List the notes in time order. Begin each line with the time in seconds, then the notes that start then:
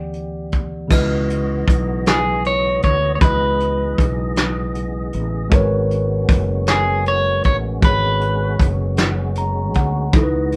Already playing: D2 E3 B3 G4 D5 F#5
0.13 closed hi-hat
0.52 kick, closed hi-hat
0.88 C#2 C#3 E3 G#3 B3 E4 F#4 D#5, kick, crash
0.92 B4 D#5
1.30 closed hi-hat
1.68 B1, kick, closed hi-hat
2.06 G#4, snare, closed hi-hat
2.45 C#5, closed hi-hat
2.82 D2 C#5, kick, closed hi-hat
3.15 C#3 C#5
3.20 C#2 G#3 E4 F#4 G#4 B4, kick, closed hi-hat
3.24 D#5
3.60 closed hi-hat
3.98 B1, kick, closed hi-hat
4.36 snare, closed hi-hat
4.75 closed hi-hat
5.13 A1, closed hi-hat
5.50 G#1 G#3 C#4 F#4 A#4 B4, kick, closed hi-hat
5.55 C#5
5.91 closed hi-hat
6.29 F#1, kick, closed hi-hat
6.67 G#4, snare, closed hi-hat
7.06 C#5, closed hi-hat
7.43 A1 C#5, kick, closed hi-hat
7.81 G#1 G#3 F#4 G#4 B4, kick, closed hi-hat
7.85 B4 C#5
8.21 closed hi-hat
8.60 F#1, kick, closed hi-hat
8.97 snare, closed hi-hat
9.35 A#5, closed hi-hat
9.74 D2 F#5, kick, closed hi-hat
10.11 C#2 C#3 E3 G#3 D#4 E4 F#4 D#5, kick, closed hi-hat
10.16 F#4 A4
10.23 B4
10.52 closed hi-hat